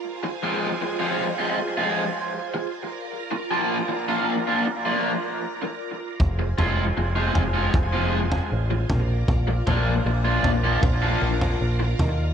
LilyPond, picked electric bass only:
\new Staff \with { instrumentName = "Picked electric bass" } { \clef bass \time 4/4 \key bes \mixolydian \tempo 4 = 78 r1 | r1 | f,,8 f,,8 f,,8 f,,8 f,,4 a,,8 bes,,8 | bes,,8 bes,,8 bes,,8 bes,,8 bes,,8 bes,,8 bes,,8 ees,8 | }